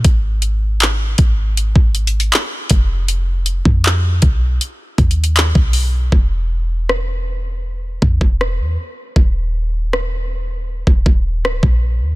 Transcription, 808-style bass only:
0.05 G#1
1.19 G#1
1.76 G#1
2.71 F1
3.66 F2
4.23 B1
4.98 D#2
5.55 B1
6.12 E1
8.02 E2
8.21 E1
8.59 E2
9.16 D#1
10.87 D#1
11.06 D#1
11.44 C#1
11.63 A#1
12.01 D#2

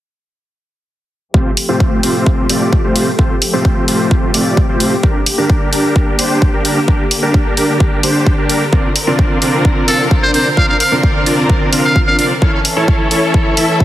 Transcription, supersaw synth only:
1.34 A3 C4 F4 G4 C5
1.69 A3 C4 F4 G4 C5
2.03 A3 C4 F4 G4 C5
2.50 A3 C4 F4 G4 D5
2.84 A3 C4 F4 G4 C5
3.19 A3 C4 F4 G4 C5
3.53 A3 C4 F4 G4 C5
3.88 A3 C4 F4 G4 C5
4.34 A3 C4 F4 G4 D5
4.69 A3 C4 F4 G4 C5
5.03 D4 G4 A#4
5.38 D4 G4 A#4
5.73 D4 G4 A#4
6.19 D4 G4 C5
6.53 D4 G4 A#4
6.88 D4 G4 A#4
7.23 D4 G4 A#4
7.57 D4 G4 A#4
8.03 D4 G4 C5
8.38 D4 G4 A#4
8.73 C4 D4 F4 A#4 D5
9.07 C4 D4 F4 A#4 D5
9.42 C4 D4 F4 A#4 D5
9.88 C4 D4 F4 A#4 F5
10.23 C4 D4 F4 A#4 D5
10.57 C4 D4 F4 A#4 D5
10.92 C4 D4 F4 A#4 D5
11.26 C4 D4 F4 A#4 D5
11.73 C4 D4 F4 A#4 F5
12.07 C4 D4 F4 A#4 D5
12.42 E4 A4 C#5
12.76 E4 A4 C#5
13.11 E4 A4 C#5
13.57 E4 A4 E5

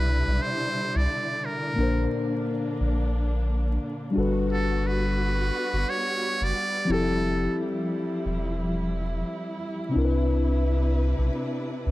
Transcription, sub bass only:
Already playing: C2
0.27 B1
0.95 C2
1.78 A#1
2.80 A#1
4.17 G1
5.73 G1
6.41 F#1
6.89 F1
8.25 E1
9.95 C2
11.18 B1
11.86 C2

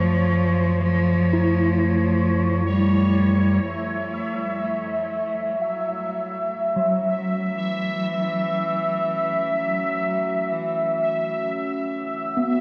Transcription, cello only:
Already playing: F3
2.67 G3
3.64 A3
4.60 A3
5.58 F#3
6.57 F#3
7.56 E3
9.54 F#3
10.52 E3

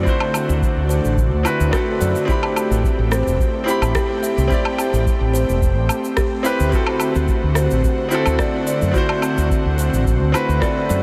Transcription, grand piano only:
Already playing: C4 E4 F#4 A4
0.03 C4 E4
0.07 F#4 C5
1.43 C4 E4 F#4 B4
1.71 C4 E4 F#4 A4
2.25 C4 E4 G4
2.31 B5
3.64 C4 E4
3.68 G4 B5
4.48 C4 E4 G4
4.54 D5
6.43 C4 E4 G4 B4
6.69 C4 E4 F#4
6.75 A4
8.09 C4 E4 F#4
8.14 A4
8.91 C4 E4
8.96 F#4 C5
10.32 C4 E4 F#4 B4
10.60 C4 E4 F#4 A4

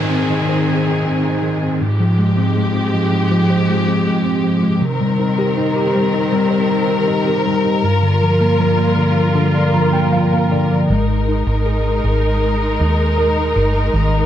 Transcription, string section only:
Already playing: D#3 C4 G#4
1.80 G#2 F3 G#3 G4
4.81 D#3 C4 A#4
7.83 G3 F4
10.90 G#3 D#4 A#4

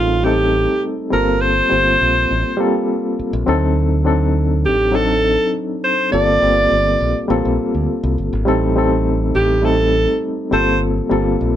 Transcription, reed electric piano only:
Already playing: G3 A3 C4 D#4 G#4 A4
0.23 G3 A3 C4 D#4 A4
1.10 G3 A#3 C4 F4 A4
1.70 G3 A#3 C4 F4 C5
2.57 G3 A#3 C4 F4 A4
3.46 F#3 C4 D4 D#4 A4
4.04 F#3 C4 D4 D#4 A4
4.92 F#3 C4 D4 D#4 A4
6.11 G3 A#3 C4 F4 A4
6.40 G3 A#3 C4 F4 G4
7.28 G3 A#3 C4 F4 A4
8.45 G3 A3 C4 D#4 A4
8.75 G3 A3 C4 D#4 A4
9.62 G3 A3 C4 D#4 A4
10.51 G3 A#3 C4 F4 A4
11.09 G3 A#3 C4 F4 A4

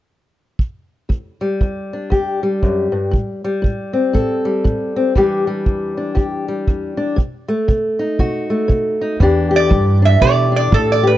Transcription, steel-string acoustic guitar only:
1.09 E2
1.41 G3
1.61 E2
1.93 D4
2.10 E2 G4
2.43 G3
2.63 F#2
2.92 G2
3.11 A2
3.44 G3
3.62 A2
3.93 C4
4.13 A2 A4
4.45 G3
4.64 A2
4.96 C4
5.15 E2 E3 G3 D4 G4
5.47 G3
5.66 E2
5.97 D4
6.15 E2 G4
6.48 G3
6.68 E2
6.97 D4
7.16 B2
7.48 A3
7.68 B2
7.99 D#4
8.19 B2 F#4
8.50 A3
8.68 B2
9.01 D#4
9.20 E2 E3 D4 G4
9.51 G4
9.69 E2
10.02 D4
10.21 E2 G4
10.52 D4
10.72 E2
11.03 G4

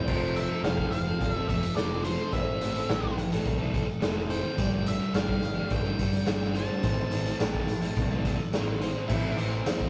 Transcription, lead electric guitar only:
Already playing: G5
0.36 E5
0.64 F5
0.91 F5
1.33 E5
1.49 E5
1.76 D5
2.04 C5
2.33 E5
4.31 G5
4.88 E5
5.15 F5
5.72 G5
6.56 A5
9.08 E4
9.37 C4

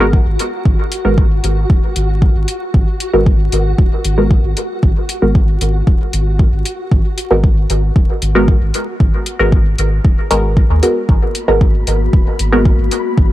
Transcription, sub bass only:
Already playing: G#1
0.26 G#1
0.65 G#1
1.05 G#1
1.44 G#1
1.70 D#1
1.96 G#1
2.35 G#1
2.74 G#1
3.13 G#1
3.52 G#1
3.78 D#1
4.04 G#1
4.44 G#1
4.83 G#1
5.22 G#1
5.61 G#1
5.87 D#1
6.13 G#1
6.52 G#1
6.91 G#1
7.31 G#1
7.70 G#1
7.96 D#1
8.22 G#1
8.61 G#1
9.00 G#1
9.39 G#1
9.78 G#1
10.04 D#1
10.31 G#1
10.70 D#2
11.09 G#1
11.48 G#1
11.87 G#1
12.13 D#1
12.39 G#1
12.78 G#1
13.18 G#1

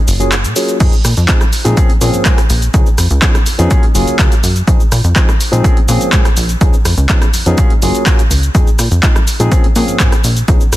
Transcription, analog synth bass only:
0.08 F#1
0.44 A#2
0.80 F2
1.05 A#2
1.17 F2
1.65 A#2
2.01 A#2
2.14 G#2
2.26 G#2
2.50 A#1
2.74 C#2
2.98 F2
3.10 C#2
3.47 F2
3.59 F2
3.95 F#1
4.07 C#2
4.19 C#2
4.43 F#2
4.68 F2
4.92 A#2
5.04 F2
5.53 A#2
5.88 A#2
6.01 G#2
6.13 G#2
6.37 A#1
6.61 C#2
6.85 F2
6.97 C#2
7.34 F2
7.46 F2
7.82 F#1
8.30 C#2
8.55 F2
8.79 A#2
8.91 F2
9.40 A#2
9.76 A#2
9.88 G#2
10.00 G#2
10.24 A#1
10.48 C#2
10.72 F2

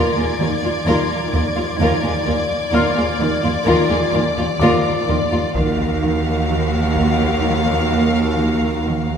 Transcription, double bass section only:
0.40 D#2
0.87 D#2
1.34 D#2
1.81 D#2
2.27 D#2
2.73 D#2
3.20 D#2
3.67 D#2
4.14 D#2
4.61 D#2
5.09 D#2
5.56 D#2

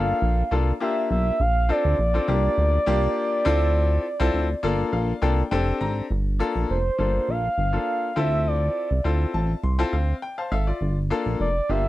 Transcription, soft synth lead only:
Already playing: F5
0.82 E5
1.11 E5
1.41 F5
1.70 D5
6.70 C5
7.30 F5
8.18 E5
8.47 D5
11.41 D5
11.70 E5

